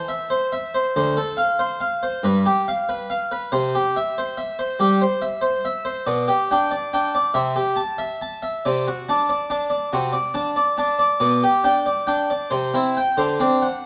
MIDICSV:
0, 0, Header, 1, 2, 480
1, 0, Start_track
1, 0, Key_signature, 0, "major"
1, 0, Tempo, 642398
1, 707, Time_signature, 4, 2, 24, 8
1, 4539, Key_signature, 1, "major"
1, 8862, Tempo, 671892
1, 10290, End_track
2, 0, Start_track
2, 0, Title_t, "Harpsichord"
2, 0, Program_c, 0, 6
2, 64, Note_on_c, 0, 76, 49
2, 226, Note_on_c, 0, 72, 52
2, 233, Note_off_c, 0, 76, 0
2, 392, Note_on_c, 0, 76, 51
2, 395, Note_off_c, 0, 72, 0
2, 556, Note_on_c, 0, 72, 50
2, 558, Note_off_c, 0, 76, 0
2, 712, Note_off_c, 0, 72, 0
2, 719, Note_on_c, 0, 38, 60
2, 721, Note_on_c, 0, 72, 55
2, 869, Note_off_c, 0, 38, 0
2, 875, Note_on_c, 0, 69, 51
2, 882, Note_off_c, 0, 72, 0
2, 1024, Note_on_c, 0, 77, 71
2, 1039, Note_off_c, 0, 69, 0
2, 1190, Note_on_c, 0, 72, 48
2, 1195, Note_off_c, 0, 77, 0
2, 1348, Note_on_c, 0, 77, 50
2, 1359, Note_off_c, 0, 72, 0
2, 1516, Note_on_c, 0, 72, 53
2, 1519, Note_off_c, 0, 77, 0
2, 1669, Note_on_c, 0, 43, 62
2, 1676, Note_off_c, 0, 72, 0
2, 1676, Note_on_c, 0, 71, 58
2, 1828, Note_off_c, 0, 43, 0
2, 1837, Note_on_c, 0, 67, 49
2, 1845, Note_off_c, 0, 71, 0
2, 2003, Note_on_c, 0, 77, 77
2, 2004, Note_off_c, 0, 67, 0
2, 2159, Note_on_c, 0, 71, 57
2, 2166, Note_off_c, 0, 77, 0
2, 2316, Note_on_c, 0, 77, 53
2, 2322, Note_off_c, 0, 71, 0
2, 2477, Note_on_c, 0, 71, 51
2, 2480, Note_off_c, 0, 77, 0
2, 2630, Note_on_c, 0, 72, 58
2, 2632, Note_off_c, 0, 71, 0
2, 2634, Note_on_c, 0, 48, 65
2, 2786, Note_off_c, 0, 48, 0
2, 2797, Note_off_c, 0, 72, 0
2, 2801, Note_on_c, 0, 67, 48
2, 2963, Note_off_c, 0, 67, 0
2, 2963, Note_on_c, 0, 76, 69
2, 3123, Note_off_c, 0, 76, 0
2, 3124, Note_on_c, 0, 72, 53
2, 3269, Note_on_c, 0, 76, 61
2, 3282, Note_off_c, 0, 72, 0
2, 3430, Note_on_c, 0, 72, 51
2, 3432, Note_off_c, 0, 76, 0
2, 3582, Note_on_c, 0, 55, 51
2, 3586, Note_on_c, 0, 67, 57
2, 3592, Note_off_c, 0, 72, 0
2, 3747, Note_on_c, 0, 72, 54
2, 3748, Note_off_c, 0, 55, 0
2, 3749, Note_off_c, 0, 67, 0
2, 3898, Note_on_c, 0, 76, 58
2, 3910, Note_off_c, 0, 72, 0
2, 4046, Note_on_c, 0, 72, 59
2, 4066, Note_off_c, 0, 76, 0
2, 4220, Note_on_c, 0, 76, 60
2, 4221, Note_off_c, 0, 72, 0
2, 4371, Note_on_c, 0, 72, 57
2, 4388, Note_off_c, 0, 76, 0
2, 4532, Note_on_c, 0, 74, 57
2, 4534, Note_on_c, 0, 47, 74
2, 4535, Note_off_c, 0, 72, 0
2, 4691, Note_off_c, 0, 47, 0
2, 4692, Note_on_c, 0, 67, 55
2, 4703, Note_off_c, 0, 74, 0
2, 4863, Note_off_c, 0, 67, 0
2, 4865, Note_on_c, 0, 79, 78
2, 4867, Note_on_c, 0, 62, 54
2, 5014, Note_on_c, 0, 74, 58
2, 5030, Note_off_c, 0, 79, 0
2, 5031, Note_off_c, 0, 62, 0
2, 5181, Note_on_c, 0, 79, 58
2, 5183, Note_on_c, 0, 62, 58
2, 5184, Note_off_c, 0, 74, 0
2, 5340, Note_on_c, 0, 74, 56
2, 5348, Note_off_c, 0, 79, 0
2, 5349, Note_off_c, 0, 62, 0
2, 5486, Note_on_c, 0, 76, 58
2, 5487, Note_on_c, 0, 48, 75
2, 5500, Note_off_c, 0, 74, 0
2, 5647, Note_off_c, 0, 48, 0
2, 5648, Note_on_c, 0, 67, 57
2, 5660, Note_off_c, 0, 76, 0
2, 5798, Note_on_c, 0, 81, 83
2, 5819, Note_off_c, 0, 67, 0
2, 5965, Note_on_c, 0, 76, 62
2, 5974, Note_off_c, 0, 81, 0
2, 6138, Note_on_c, 0, 81, 67
2, 6139, Note_off_c, 0, 76, 0
2, 6295, Note_on_c, 0, 76, 55
2, 6307, Note_off_c, 0, 81, 0
2, 6458, Note_off_c, 0, 76, 0
2, 6466, Note_on_c, 0, 74, 65
2, 6469, Note_on_c, 0, 48, 72
2, 6621, Note_off_c, 0, 48, 0
2, 6631, Note_on_c, 0, 66, 59
2, 6632, Note_off_c, 0, 74, 0
2, 6789, Note_on_c, 0, 81, 77
2, 6793, Note_on_c, 0, 62, 54
2, 6794, Note_off_c, 0, 66, 0
2, 6944, Note_on_c, 0, 74, 63
2, 6953, Note_off_c, 0, 81, 0
2, 6954, Note_off_c, 0, 62, 0
2, 7099, Note_on_c, 0, 62, 53
2, 7101, Note_on_c, 0, 81, 57
2, 7110, Note_off_c, 0, 74, 0
2, 7248, Note_on_c, 0, 74, 63
2, 7267, Note_off_c, 0, 62, 0
2, 7268, Note_off_c, 0, 81, 0
2, 7418, Note_on_c, 0, 66, 60
2, 7419, Note_on_c, 0, 48, 60
2, 7422, Note_off_c, 0, 74, 0
2, 7566, Note_on_c, 0, 74, 60
2, 7576, Note_off_c, 0, 48, 0
2, 7588, Note_off_c, 0, 66, 0
2, 7728, Note_on_c, 0, 62, 55
2, 7728, Note_on_c, 0, 81, 69
2, 7743, Note_off_c, 0, 74, 0
2, 7893, Note_on_c, 0, 74, 62
2, 7904, Note_off_c, 0, 62, 0
2, 7904, Note_off_c, 0, 81, 0
2, 8053, Note_on_c, 0, 81, 63
2, 8055, Note_on_c, 0, 62, 57
2, 8067, Note_off_c, 0, 74, 0
2, 8210, Note_on_c, 0, 74, 57
2, 8226, Note_off_c, 0, 81, 0
2, 8228, Note_off_c, 0, 62, 0
2, 8361, Note_off_c, 0, 74, 0
2, 8370, Note_on_c, 0, 74, 68
2, 8372, Note_on_c, 0, 47, 67
2, 8533, Note_off_c, 0, 47, 0
2, 8543, Note_on_c, 0, 67, 56
2, 8545, Note_off_c, 0, 74, 0
2, 8697, Note_on_c, 0, 62, 52
2, 8699, Note_on_c, 0, 79, 85
2, 8712, Note_off_c, 0, 67, 0
2, 8863, Note_on_c, 0, 74, 63
2, 8869, Note_off_c, 0, 62, 0
2, 8870, Note_off_c, 0, 79, 0
2, 9012, Note_on_c, 0, 79, 57
2, 9014, Note_on_c, 0, 62, 56
2, 9026, Note_off_c, 0, 74, 0
2, 9178, Note_off_c, 0, 79, 0
2, 9178, Note_on_c, 0, 74, 54
2, 9179, Note_off_c, 0, 62, 0
2, 9322, Note_on_c, 0, 72, 55
2, 9327, Note_on_c, 0, 48, 60
2, 9333, Note_off_c, 0, 74, 0
2, 9483, Note_off_c, 0, 48, 0
2, 9489, Note_on_c, 0, 60, 50
2, 9493, Note_off_c, 0, 72, 0
2, 9494, Note_on_c, 0, 64, 56
2, 9655, Note_on_c, 0, 79, 66
2, 9657, Note_off_c, 0, 60, 0
2, 9660, Note_off_c, 0, 64, 0
2, 9801, Note_on_c, 0, 50, 62
2, 9803, Note_on_c, 0, 72, 60
2, 9813, Note_off_c, 0, 79, 0
2, 9961, Note_on_c, 0, 60, 51
2, 9961, Note_on_c, 0, 62, 56
2, 9962, Note_off_c, 0, 50, 0
2, 9977, Note_off_c, 0, 72, 0
2, 10121, Note_on_c, 0, 78, 66
2, 10140, Note_off_c, 0, 60, 0
2, 10140, Note_off_c, 0, 62, 0
2, 10290, Note_off_c, 0, 78, 0
2, 10290, End_track
0, 0, End_of_file